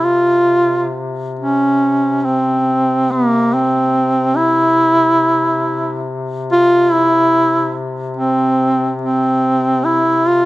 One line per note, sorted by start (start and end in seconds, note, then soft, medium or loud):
0.00 10.45 C3 soft
0.04 0.94 F4 medium
1.39 2.22 C#4 medium
2.22 2.27 C#4 medium
2.26 3.13 C4 medium
3.11 3.55 A#3 loud
3.54 4.38 C4 medium
4.37 6.08 E4 loud
6.52 6.94 F4 loud
6.92 7.77 E4 loud
8.17 8.96 C4 medium
9.02 9.86 C4 medium
9.85 10.29 E4 loud
10.28 10.45 F4 medium